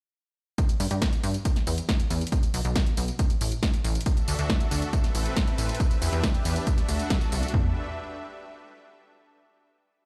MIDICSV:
0, 0, Header, 1, 4, 480
1, 0, Start_track
1, 0, Key_signature, 1, "minor"
1, 0, Tempo, 434783
1, 644, Time_signature, 4, 2, 24, 8
1, 11101, End_track
2, 0, Start_track
2, 0, Title_t, "Supersaw synth"
2, 0, Program_c, 0, 81
2, 4481, Note_on_c, 0, 76, 86
2, 4482, Note_on_c, 0, 62, 74
2, 4482, Note_on_c, 0, 66, 70
2, 4482, Note_on_c, 0, 69, 70
2, 5430, Note_off_c, 0, 76, 0
2, 5433, Note_off_c, 0, 62, 0
2, 5433, Note_off_c, 0, 66, 0
2, 5433, Note_off_c, 0, 69, 0
2, 5443, Note_on_c, 0, 71, 70
2, 5444, Note_on_c, 0, 60, 72
2, 5444, Note_on_c, 0, 69, 68
2, 5444, Note_on_c, 0, 76, 90
2, 6394, Note_off_c, 0, 60, 0
2, 6394, Note_off_c, 0, 69, 0
2, 6404, Note_on_c, 0, 62, 77
2, 6404, Note_on_c, 0, 67, 69
2, 7344, Note_off_c, 0, 71, 0
2, 7354, Note_off_c, 0, 67, 0
2, 7364, Note_on_c, 0, 66, 68
2, 7365, Note_on_c, 0, 69, 68
2, 8295, Note_off_c, 0, 76, 0
2, 8304, Note_off_c, 0, 62, 0
2, 8314, Note_off_c, 0, 66, 0
2, 8315, Note_off_c, 0, 69, 0
2, 8323, Note_on_c, 0, 76, 79
2, 8324, Note_on_c, 0, 62, 76
2, 8324, Note_on_c, 0, 67, 65
2, 8324, Note_on_c, 0, 71, 69
2, 8546, Note_off_c, 0, 76, 0
2, 8547, Note_off_c, 0, 62, 0
2, 8547, Note_off_c, 0, 67, 0
2, 8547, Note_off_c, 0, 71, 0
2, 11101, End_track
3, 0, Start_track
3, 0, Title_t, "Analog synth bass"
3, 0, Program_c, 1, 38
3, 883, Note_on_c, 1, 43, 98
3, 956, Note_off_c, 1, 43, 0
3, 1004, Note_on_c, 1, 43, 93
3, 1149, Note_off_c, 1, 43, 0
3, 1363, Note_on_c, 1, 43, 104
3, 1509, Note_off_c, 1, 43, 0
3, 1844, Note_on_c, 1, 40, 85
3, 1989, Note_off_c, 1, 40, 0
3, 2324, Note_on_c, 1, 40, 106
3, 2469, Note_off_c, 1, 40, 0
3, 2803, Note_on_c, 1, 35, 105
3, 2876, Note_off_c, 1, 35, 0
3, 2924, Note_on_c, 1, 35, 98
3, 3069, Note_off_c, 1, 35, 0
3, 3284, Note_on_c, 1, 35, 101
3, 3429, Note_off_c, 1, 35, 0
3, 3764, Note_on_c, 1, 33, 86
3, 3909, Note_off_c, 1, 33, 0
3, 4244, Note_on_c, 1, 33, 110
3, 4389, Note_off_c, 1, 33, 0
3, 4724, Note_on_c, 1, 38, 99
3, 4796, Note_off_c, 1, 38, 0
3, 4845, Note_on_c, 1, 38, 95
3, 4989, Note_off_c, 1, 38, 0
3, 5203, Note_on_c, 1, 38, 107
3, 5348, Note_off_c, 1, 38, 0
3, 5683, Note_on_c, 1, 33, 81
3, 5828, Note_off_c, 1, 33, 0
3, 6163, Note_on_c, 1, 33, 109
3, 6308, Note_off_c, 1, 33, 0
3, 6643, Note_on_c, 1, 40, 98
3, 6716, Note_off_c, 1, 40, 0
3, 6763, Note_on_c, 1, 40, 99
3, 6908, Note_off_c, 1, 40, 0
3, 7123, Note_on_c, 1, 40, 106
3, 7268, Note_off_c, 1, 40, 0
3, 7603, Note_on_c, 1, 38, 84
3, 7748, Note_off_c, 1, 38, 0
3, 8084, Note_on_c, 1, 36, 99
3, 8229, Note_off_c, 1, 36, 0
3, 8323, Note_on_c, 1, 40, 104
3, 8547, Note_off_c, 1, 40, 0
3, 11101, End_track
4, 0, Start_track
4, 0, Title_t, "Drums"
4, 643, Note_on_c, 9, 36, 118
4, 643, Note_on_c, 9, 42, 79
4, 643, Note_on_c, 9, 54, 39
4, 753, Note_off_c, 9, 42, 0
4, 753, Note_off_c, 9, 54, 0
4, 754, Note_off_c, 9, 36, 0
4, 763, Note_on_c, 9, 42, 53
4, 763, Note_on_c, 9, 54, 21
4, 873, Note_off_c, 9, 42, 0
4, 873, Note_off_c, 9, 54, 0
4, 883, Note_on_c, 9, 46, 104
4, 883, Note_on_c, 9, 54, 68
4, 993, Note_off_c, 9, 46, 0
4, 993, Note_off_c, 9, 54, 0
4, 1003, Note_on_c, 9, 42, 54
4, 1003, Note_on_c, 9, 54, 32
4, 1113, Note_off_c, 9, 42, 0
4, 1113, Note_off_c, 9, 54, 0
4, 1123, Note_on_c, 9, 36, 125
4, 1123, Note_on_c, 9, 38, 127
4, 1123, Note_on_c, 9, 42, 83
4, 1123, Note_on_c, 9, 54, 41
4, 1233, Note_off_c, 9, 38, 0
4, 1233, Note_off_c, 9, 42, 0
4, 1233, Note_off_c, 9, 54, 0
4, 1234, Note_off_c, 9, 36, 0
4, 1244, Note_on_c, 9, 42, 56
4, 1244, Note_on_c, 9, 54, 20
4, 1354, Note_off_c, 9, 42, 0
4, 1354, Note_off_c, 9, 54, 0
4, 1363, Note_on_c, 9, 46, 92
4, 1363, Note_on_c, 9, 54, 71
4, 1474, Note_off_c, 9, 46, 0
4, 1474, Note_off_c, 9, 54, 0
4, 1483, Note_on_c, 9, 42, 53
4, 1483, Note_on_c, 9, 54, 31
4, 1593, Note_off_c, 9, 42, 0
4, 1593, Note_off_c, 9, 54, 0
4, 1603, Note_on_c, 9, 36, 114
4, 1603, Note_on_c, 9, 42, 88
4, 1603, Note_on_c, 9, 54, 42
4, 1713, Note_off_c, 9, 42, 0
4, 1713, Note_off_c, 9, 54, 0
4, 1714, Note_off_c, 9, 36, 0
4, 1724, Note_on_c, 9, 38, 37
4, 1724, Note_on_c, 9, 42, 51
4, 1724, Note_on_c, 9, 54, 20
4, 1834, Note_off_c, 9, 38, 0
4, 1834, Note_off_c, 9, 42, 0
4, 1834, Note_off_c, 9, 54, 0
4, 1843, Note_on_c, 9, 46, 102
4, 1843, Note_on_c, 9, 54, 66
4, 1954, Note_off_c, 9, 46, 0
4, 1954, Note_off_c, 9, 54, 0
4, 1964, Note_on_c, 9, 42, 55
4, 1964, Note_on_c, 9, 54, 32
4, 2074, Note_off_c, 9, 42, 0
4, 2074, Note_off_c, 9, 54, 0
4, 2083, Note_on_c, 9, 36, 119
4, 2083, Note_on_c, 9, 38, 123
4, 2083, Note_on_c, 9, 42, 82
4, 2083, Note_on_c, 9, 54, 42
4, 2194, Note_off_c, 9, 36, 0
4, 2194, Note_off_c, 9, 38, 0
4, 2194, Note_off_c, 9, 42, 0
4, 2194, Note_off_c, 9, 54, 0
4, 2204, Note_on_c, 9, 42, 57
4, 2204, Note_on_c, 9, 54, 21
4, 2314, Note_off_c, 9, 42, 0
4, 2314, Note_off_c, 9, 54, 0
4, 2323, Note_on_c, 9, 46, 88
4, 2323, Note_on_c, 9, 54, 69
4, 2434, Note_off_c, 9, 46, 0
4, 2434, Note_off_c, 9, 54, 0
4, 2443, Note_on_c, 9, 42, 52
4, 2443, Note_on_c, 9, 54, 30
4, 2503, Note_off_c, 9, 42, 0
4, 2503, Note_on_c, 9, 42, 69
4, 2554, Note_off_c, 9, 54, 0
4, 2563, Note_on_c, 9, 36, 120
4, 2564, Note_off_c, 9, 42, 0
4, 2564, Note_on_c, 9, 42, 78
4, 2564, Note_on_c, 9, 54, 41
4, 2674, Note_off_c, 9, 36, 0
4, 2674, Note_off_c, 9, 42, 0
4, 2674, Note_off_c, 9, 54, 0
4, 2683, Note_on_c, 9, 42, 53
4, 2683, Note_on_c, 9, 54, 21
4, 2793, Note_off_c, 9, 42, 0
4, 2793, Note_off_c, 9, 54, 0
4, 2803, Note_on_c, 9, 46, 109
4, 2803, Note_on_c, 9, 54, 72
4, 2913, Note_off_c, 9, 46, 0
4, 2913, Note_off_c, 9, 54, 0
4, 2923, Note_on_c, 9, 42, 53
4, 2923, Note_on_c, 9, 54, 30
4, 3034, Note_off_c, 9, 42, 0
4, 3034, Note_off_c, 9, 54, 0
4, 3042, Note_on_c, 9, 38, 122
4, 3042, Note_on_c, 9, 42, 80
4, 3042, Note_on_c, 9, 54, 41
4, 3043, Note_on_c, 9, 36, 127
4, 3153, Note_off_c, 9, 38, 0
4, 3153, Note_off_c, 9, 42, 0
4, 3153, Note_off_c, 9, 54, 0
4, 3154, Note_off_c, 9, 36, 0
4, 3163, Note_on_c, 9, 42, 53
4, 3163, Note_on_c, 9, 54, 19
4, 3273, Note_off_c, 9, 42, 0
4, 3273, Note_off_c, 9, 54, 0
4, 3282, Note_on_c, 9, 46, 100
4, 3282, Note_on_c, 9, 54, 74
4, 3392, Note_off_c, 9, 46, 0
4, 3392, Note_off_c, 9, 54, 0
4, 3402, Note_on_c, 9, 42, 55
4, 3402, Note_on_c, 9, 54, 31
4, 3512, Note_off_c, 9, 42, 0
4, 3512, Note_off_c, 9, 54, 0
4, 3523, Note_on_c, 9, 42, 89
4, 3523, Note_on_c, 9, 54, 42
4, 3524, Note_on_c, 9, 36, 121
4, 3633, Note_off_c, 9, 42, 0
4, 3633, Note_off_c, 9, 54, 0
4, 3634, Note_off_c, 9, 36, 0
4, 3643, Note_on_c, 9, 42, 50
4, 3643, Note_on_c, 9, 54, 20
4, 3754, Note_off_c, 9, 42, 0
4, 3754, Note_off_c, 9, 54, 0
4, 3764, Note_on_c, 9, 46, 113
4, 3764, Note_on_c, 9, 54, 69
4, 3874, Note_off_c, 9, 46, 0
4, 3874, Note_off_c, 9, 54, 0
4, 3883, Note_on_c, 9, 42, 54
4, 3883, Note_on_c, 9, 54, 32
4, 3994, Note_off_c, 9, 42, 0
4, 3994, Note_off_c, 9, 54, 0
4, 4004, Note_on_c, 9, 36, 122
4, 4004, Note_on_c, 9, 38, 125
4, 4004, Note_on_c, 9, 42, 84
4, 4004, Note_on_c, 9, 54, 42
4, 4114, Note_off_c, 9, 36, 0
4, 4114, Note_off_c, 9, 38, 0
4, 4114, Note_off_c, 9, 42, 0
4, 4114, Note_off_c, 9, 54, 0
4, 4124, Note_on_c, 9, 42, 56
4, 4124, Note_on_c, 9, 54, 21
4, 4235, Note_off_c, 9, 42, 0
4, 4235, Note_off_c, 9, 54, 0
4, 4244, Note_on_c, 9, 46, 92
4, 4244, Note_on_c, 9, 54, 68
4, 4355, Note_off_c, 9, 46, 0
4, 4355, Note_off_c, 9, 54, 0
4, 4364, Note_on_c, 9, 42, 51
4, 4364, Note_on_c, 9, 54, 30
4, 4423, Note_off_c, 9, 42, 0
4, 4423, Note_on_c, 9, 42, 69
4, 4474, Note_off_c, 9, 54, 0
4, 4483, Note_off_c, 9, 42, 0
4, 4483, Note_on_c, 9, 42, 76
4, 4483, Note_on_c, 9, 54, 42
4, 4484, Note_on_c, 9, 36, 126
4, 4593, Note_off_c, 9, 42, 0
4, 4593, Note_off_c, 9, 54, 0
4, 4594, Note_off_c, 9, 36, 0
4, 4603, Note_on_c, 9, 42, 49
4, 4603, Note_on_c, 9, 54, 20
4, 4714, Note_off_c, 9, 42, 0
4, 4714, Note_off_c, 9, 54, 0
4, 4723, Note_on_c, 9, 46, 108
4, 4723, Note_on_c, 9, 54, 72
4, 4833, Note_off_c, 9, 46, 0
4, 4833, Note_off_c, 9, 54, 0
4, 4843, Note_on_c, 9, 42, 55
4, 4843, Note_on_c, 9, 54, 32
4, 4954, Note_off_c, 9, 42, 0
4, 4954, Note_off_c, 9, 54, 0
4, 4963, Note_on_c, 9, 36, 127
4, 4964, Note_on_c, 9, 38, 123
4, 4964, Note_on_c, 9, 42, 76
4, 4964, Note_on_c, 9, 54, 41
4, 5074, Note_off_c, 9, 36, 0
4, 5074, Note_off_c, 9, 38, 0
4, 5074, Note_off_c, 9, 42, 0
4, 5074, Note_off_c, 9, 54, 0
4, 5084, Note_on_c, 9, 42, 49
4, 5084, Note_on_c, 9, 54, 20
4, 5194, Note_off_c, 9, 42, 0
4, 5194, Note_off_c, 9, 54, 0
4, 5203, Note_on_c, 9, 46, 98
4, 5203, Note_on_c, 9, 54, 75
4, 5313, Note_off_c, 9, 46, 0
4, 5313, Note_off_c, 9, 54, 0
4, 5323, Note_on_c, 9, 42, 55
4, 5323, Note_on_c, 9, 54, 34
4, 5434, Note_off_c, 9, 42, 0
4, 5434, Note_off_c, 9, 54, 0
4, 5444, Note_on_c, 9, 36, 122
4, 5444, Note_on_c, 9, 42, 80
4, 5444, Note_on_c, 9, 54, 42
4, 5554, Note_off_c, 9, 36, 0
4, 5554, Note_off_c, 9, 42, 0
4, 5554, Note_off_c, 9, 54, 0
4, 5563, Note_on_c, 9, 38, 35
4, 5563, Note_on_c, 9, 42, 48
4, 5563, Note_on_c, 9, 54, 19
4, 5674, Note_off_c, 9, 38, 0
4, 5674, Note_off_c, 9, 42, 0
4, 5674, Note_off_c, 9, 54, 0
4, 5683, Note_on_c, 9, 46, 113
4, 5683, Note_on_c, 9, 54, 72
4, 5793, Note_off_c, 9, 46, 0
4, 5793, Note_off_c, 9, 54, 0
4, 5803, Note_on_c, 9, 42, 54
4, 5803, Note_on_c, 9, 54, 32
4, 5914, Note_off_c, 9, 42, 0
4, 5914, Note_off_c, 9, 54, 0
4, 5923, Note_on_c, 9, 36, 118
4, 5923, Note_on_c, 9, 38, 127
4, 5923, Note_on_c, 9, 42, 80
4, 5923, Note_on_c, 9, 54, 43
4, 6033, Note_off_c, 9, 38, 0
4, 6033, Note_off_c, 9, 42, 0
4, 6033, Note_off_c, 9, 54, 0
4, 6034, Note_off_c, 9, 36, 0
4, 6043, Note_on_c, 9, 42, 54
4, 6043, Note_on_c, 9, 54, 21
4, 6154, Note_off_c, 9, 42, 0
4, 6154, Note_off_c, 9, 54, 0
4, 6163, Note_on_c, 9, 46, 92
4, 6163, Note_on_c, 9, 54, 73
4, 6274, Note_off_c, 9, 46, 0
4, 6274, Note_off_c, 9, 54, 0
4, 6284, Note_on_c, 9, 42, 48
4, 6284, Note_on_c, 9, 54, 31
4, 6344, Note_off_c, 9, 42, 0
4, 6344, Note_on_c, 9, 42, 64
4, 6394, Note_off_c, 9, 54, 0
4, 6403, Note_on_c, 9, 36, 127
4, 6404, Note_off_c, 9, 42, 0
4, 6404, Note_on_c, 9, 42, 75
4, 6404, Note_on_c, 9, 54, 42
4, 6513, Note_off_c, 9, 36, 0
4, 6514, Note_off_c, 9, 42, 0
4, 6514, Note_off_c, 9, 54, 0
4, 6523, Note_on_c, 9, 42, 51
4, 6523, Note_on_c, 9, 54, 21
4, 6633, Note_off_c, 9, 42, 0
4, 6633, Note_off_c, 9, 54, 0
4, 6644, Note_on_c, 9, 46, 111
4, 6644, Note_on_c, 9, 54, 74
4, 6754, Note_off_c, 9, 46, 0
4, 6754, Note_off_c, 9, 54, 0
4, 6764, Note_on_c, 9, 42, 51
4, 6764, Note_on_c, 9, 54, 33
4, 6874, Note_off_c, 9, 42, 0
4, 6874, Note_off_c, 9, 54, 0
4, 6883, Note_on_c, 9, 36, 125
4, 6883, Note_on_c, 9, 38, 118
4, 6883, Note_on_c, 9, 42, 76
4, 6883, Note_on_c, 9, 54, 44
4, 6994, Note_off_c, 9, 36, 0
4, 6994, Note_off_c, 9, 38, 0
4, 6994, Note_off_c, 9, 42, 0
4, 6994, Note_off_c, 9, 54, 0
4, 7004, Note_on_c, 9, 42, 50
4, 7004, Note_on_c, 9, 54, 21
4, 7114, Note_off_c, 9, 42, 0
4, 7114, Note_off_c, 9, 54, 0
4, 7123, Note_on_c, 9, 46, 97
4, 7123, Note_on_c, 9, 54, 73
4, 7233, Note_off_c, 9, 46, 0
4, 7233, Note_off_c, 9, 54, 0
4, 7243, Note_on_c, 9, 42, 54
4, 7243, Note_on_c, 9, 54, 35
4, 7353, Note_off_c, 9, 42, 0
4, 7353, Note_off_c, 9, 54, 0
4, 7362, Note_on_c, 9, 42, 82
4, 7362, Note_on_c, 9, 54, 46
4, 7363, Note_on_c, 9, 36, 126
4, 7473, Note_off_c, 9, 36, 0
4, 7473, Note_off_c, 9, 42, 0
4, 7473, Note_off_c, 9, 54, 0
4, 7483, Note_on_c, 9, 38, 35
4, 7483, Note_on_c, 9, 42, 49
4, 7483, Note_on_c, 9, 54, 20
4, 7593, Note_off_c, 9, 38, 0
4, 7593, Note_off_c, 9, 42, 0
4, 7593, Note_off_c, 9, 54, 0
4, 7602, Note_on_c, 9, 46, 110
4, 7602, Note_on_c, 9, 54, 77
4, 7712, Note_off_c, 9, 46, 0
4, 7712, Note_off_c, 9, 54, 0
4, 7722, Note_on_c, 9, 42, 52
4, 7722, Note_on_c, 9, 54, 34
4, 7832, Note_off_c, 9, 42, 0
4, 7832, Note_off_c, 9, 54, 0
4, 7842, Note_on_c, 9, 38, 123
4, 7842, Note_on_c, 9, 42, 78
4, 7842, Note_on_c, 9, 54, 44
4, 7843, Note_on_c, 9, 36, 124
4, 7952, Note_off_c, 9, 38, 0
4, 7952, Note_off_c, 9, 42, 0
4, 7952, Note_off_c, 9, 54, 0
4, 7954, Note_off_c, 9, 36, 0
4, 7962, Note_on_c, 9, 42, 54
4, 7962, Note_on_c, 9, 54, 22
4, 8073, Note_off_c, 9, 42, 0
4, 8073, Note_off_c, 9, 54, 0
4, 8083, Note_on_c, 9, 46, 93
4, 8083, Note_on_c, 9, 54, 76
4, 8193, Note_off_c, 9, 46, 0
4, 8193, Note_off_c, 9, 54, 0
4, 8202, Note_on_c, 9, 42, 46
4, 8202, Note_on_c, 9, 54, 33
4, 8262, Note_off_c, 9, 42, 0
4, 8262, Note_on_c, 9, 42, 63
4, 8312, Note_off_c, 9, 54, 0
4, 8322, Note_on_c, 9, 43, 105
4, 8323, Note_on_c, 9, 36, 106
4, 8373, Note_off_c, 9, 42, 0
4, 8433, Note_off_c, 9, 43, 0
4, 8434, Note_off_c, 9, 36, 0
4, 11101, End_track
0, 0, End_of_file